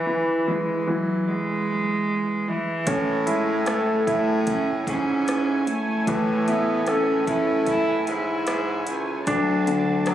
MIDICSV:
0, 0, Header, 1, 6, 480
1, 0, Start_track
1, 0, Key_signature, 3, "major"
1, 0, Tempo, 800000
1, 1723, Time_signature, 4, 2, 24, 8
1, 6087, End_track
2, 0, Start_track
2, 0, Title_t, "String section"
2, 0, Program_c, 0, 48
2, 1722, Note_on_c, 0, 64, 54
2, 1722, Note_on_c, 0, 73, 49
2, 1724, Note_on_c, 0, 80, 57
2, 5538, Note_off_c, 0, 64, 0
2, 5539, Note_off_c, 0, 73, 0
2, 5540, Note_off_c, 0, 80, 0
2, 5565, Note_on_c, 0, 81, 65
2, 5566, Note_on_c, 0, 74, 52
2, 5567, Note_on_c, 0, 66, 57
2, 6087, Note_off_c, 0, 66, 0
2, 6087, Note_off_c, 0, 74, 0
2, 6087, Note_off_c, 0, 81, 0
2, 6087, End_track
3, 0, Start_track
3, 0, Title_t, "Grand piano"
3, 0, Program_c, 1, 0
3, 0, Control_c, 1, 64, 127
3, 0, Note_on_c, 1, 52, 51
3, 42, Note_off_c, 1, 52, 0
3, 42, Note_on_c, 1, 52, 43
3, 278, Note_off_c, 1, 52, 0
3, 287, Note_on_c, 1, 52, 43
3, 515, Note_off_c, 1, 52, 0
3, 524, Note_on_c, 1, 52, 41
3, 1460, Note_off_c, 1, 52, 0
3, 1721, Note_on_c, 1, 61, 51
3, 1731, Control_c, 1, 64, 0
3, 1823, Control_c, 1, 64, 127
3, 1959, Note_on_c, 1, 64, 42
3, 2199, Note_on_c, 1, 69, 42
3, 2433, Note_off_c, 1, 64, 0
3, 2442, Note_on_c, 1, 64, 42
3, 3137, Note_off_c, 1, 69, 0
3, 3378, Note_off_c, 1, 64, 0
3, 3618, Note_off_c, 1, 61, 0
3, 3649, Note_on_c, 1, 52, 53
3, 3888, Note_on_c, 1, 64, 40
3, 4132, Note_on_c, 1, 69, 43
3, 4366, Note_off_c, 1, 64, 0
3, 4375, Note_on_c, 1, 64, 44
3, 5064, Note_off_c, 1, 69, 0
3, 5305, Note_off_c, 1, 64, 0
3, 5542, Note_off_c, 1, 52, 0
3, 5565, Note_on_c, 1, 62, 56
3, 5570, Control_c, 1, 64, 0
3, 5659, Control_c, 1, 64, 127
3, 5805, Note_on_c, 1, 50, 43
3, 6047, Note_on_c, 1, 54, 46
3, 6087, Note_off_c, 1, 50, 0
3, 6087, Note_off_c, 1, 54, 0
3, 6087, Note_off_c, 1, 62, 0
3, 6087, End_track
4, 0, Start_track
4, 0, Title_t, "Cello"
4, 0, Program_c, 2, 42
4, 0, Note_on_c, 2, 52, 70
4, 287, Note_on_c, 2, 56, 63
4, 296, Note_off_c, 2, 52, 0
4, 526, Note_on_c, 2, 54, 66
4, 535, Note_off_c, 2, 56, 0
4, 765, Note_on_c, 2, 56, 75
4, 774, Note_off_c, 2, 54, 0
4, 1489, Note_on_c, 2, 52, 70
4, 1498, Note_off_c, 2, 56, 0
4, 1964, Note_off_c, 2, 52, 0
4, 1968, Note_on_c, 2, 56, 69
4, 2189, Note_off_c, 2, 56, 0
4, 2211, Note_on_c, 2, 57, 72
4, 2431, Note_off_c, 2, 57, 0
4, 2444, Note_on_c, 2, 57, 69
4, 2667, Note_off_c, 2, 57, 0
4, 2693, Note_on_c, 2, 61, 75
4, 2799, Note_off_c, 2, 61, 0
4, 2922, Note_on_c, 2, 61, 75
4, 3399, Note_on_c, 2, 57, 78
4, 3408, Note_off_c, 2, 61, 0
4, 3886, Note_on_c, 2, 59, 70
4, 3895, Note_off_c, 2, 57, 0
4, 4124, Note_off_c, 2, 59, 0
4, 4130, Note_on_c, 2, 61, 80
4, 4350, Note_off_c, 2, 61, 0
4, 4370, Note_on_c, 2, 61, 81
4, 4590, Note_off_c, 2, 61, 0
4, 4610, Note_on_c, 2, 64, 88
4, 4830, Note_off_c, 2, 64, 0
4, 4853, Note_on_c, 2, 64, 74
4, 5304, Note_off_c, 2, 64, 0
4, 5583, Note_on_c, 2, 54, 80
4, 6053, Note_on_c, 2, 57, 86
4, 6062, Note_off_c, 2, 54, 0
4, 6087, Note_off_c, 2, 57, 0
4, 6087, End_track
5, 0, Start_track
5, 0, Title_t, "Baritone saxophone"
5, 0, Program_c, 3, 67
5, 1721, Note_on_c, 3, 45, 80
5, 2418, Note_off_c, 3, 45, 0
5, 2444, Note_on_c, 3, 45, 70
5, 2899, Note_off_c, 3, 45, 0
5, 2923, Note_on_c, 3, 44, 64
5, 3379, Note_off_c, 3, 44, 0
5, 3642, Note_on_c, 3, 45, 77
5, 4339, Note_off_c, 3, 45, 0
5, 4362, Note_on_c, 3, 45, 76
5, 4818, Note_off_c, 3, 45, 0
5, 4844, Note_on_c, 3, 44, 72
5, 5067, Note_off_c, 3, 44, 0
5, 5082, Note_on_c, 3, 44, 74
5, 5306, Note_off_c, 3, 44, 0
5, 5321, Note_on_c, 3, 37, 65
5, 5545, Note_off_c, 3, 37, 0
5, 5563, Note_on_c, 3, 38, 81
5, 6087, Note_off_c, 3, 38, 0
5, 6087, End_track
6, 0, Start_track
6, 0, Title_t, "Drums"
6, 1720, Note_on_c, 9, 42, 72
6, 1722, Note_on_c, 9, 36, 84
6, 1780, Note_off_c, 9, 42, 0
6, 1782, Note_off_c, 9, 36, 0
6, 1962, Note_on_c, 9, 42, 50
6, 2022, Note_off_c, 9, 42, 0
6, 2198, Note_on_c, 9, 42, 63
6, 2205, Note_on_c, 9, 37, 87
6, 2258, Note_off_c, 9, 42, 0
6, 2265, Note_off_c, 9, 37, 0
6, 2444, Note_on_c, 9, 36, 65
6, 2445, Note_on_c, 9, 42, 62
6, 2504, Note_off_c, 9, 36, 0
6, 2505, Note_off_c, 9, 42, 0
6, 2566, Note_on_c, 9, 37, 24
6, 2626, Note_off_c, 9, 37, 0
6, 2681, Note_on_c, 9, 42, 68
6, 2684, Note_on_c, 9, 36, 65
6, 2741, Note_off_c, 9, 42, 0
6, 2744, Note_off_c, 9, 36, 0
6, 2922, Note_on_c, 9, 36, 71
6, 2925, Note_on_c, 9, 42, 54
6, 2982, Note_off_c, 9, 36, 0
6, 2985, Note_off_c, 9, 42, 0
6, 3167, Note_on_c, 9, 42, 65
6, 3172, Note_on_c, 9, 37, 82
6, 3227, Note_off_c, 9, 42, 0
6, 3232, Note_off_c, 9, 37, 0
6, 3403, Note_on_c, 9, 42, 50
6, 3463, Note_off_c, 9, 42, 0
6, 3644, Note_on_c, 9, 36, 80
6, 3644, Note_on_c, 9, 42, 71
6, 3704, Note_off_c, 9, 36, 0
6, 3704, Note_off_c, 9, 42, 0
6, 3886, Note_on_c, 9, 42, 55
6, 3946, Note_off_c, 9, 42, 0
6, 4119, Note_on_c, 9, 42, 64
6, 4125, Note_on_c, 9, 37, 82
6, 4179, Note_off_c, 9, 42, 0
6, 4185, Note_off_c, 9, 37, 0
6, 4364, Note_on_c, 9, 36, 67
6, 4365, Note_on_c, 9, 42, 62
6, 4424, Note_off_c, 9, 36, 0
6, 4425, Note_off_c, 9, 42, 0
6, 4484, Note_on_c, 9, 37, 24
6, 4544, Note_off_c, 9, 37, 0
6, 4599, Note_on_c, 9, 42, 71
6, 4603, Note_on_c, 9, 36, 65
6, 4659, Note_off_c, 9, 42, 0
6, 4663, Note_off_c, 9, 36, 0
6, 4843, Note_on_c, 9, 42, 53
6, 4903, Note_off_c, 9, 42, 0
6, 5080, Note_on_c, 9, 42, 62
6, 5085, Note_on_c, 9, 37, 84
6, 5140, Note_off_c, 9, 42, 0
6, 5145, Note_off_c, 9, 37, 0
6, 5319, Note_on_c, 9, 42, 49
6, 5379, Note_off_c, 9, 42, 0
6, 5562, Note_on_c, 9, 42, 74
6, 5563, Note_on_c, 9, 36, 83
6, 5622, Note_off_c, 9, 42, 0
6, 5623, Note_off_c, 9, 36, 0
6, 5803, Note_on_c, 9, 42, 53
6, 5863, Note_off_c, 9, 42, 0
6, 6035, Note_on_c, 9, 42, 64
6, 6042, Note_on_c, 9, 37, 89
6, 6087, Note_off_c, 9, 37, 0
6, 6087, Note_off_c, 9, 42, 0
6, 6087, End_track
0, 0, End_of_file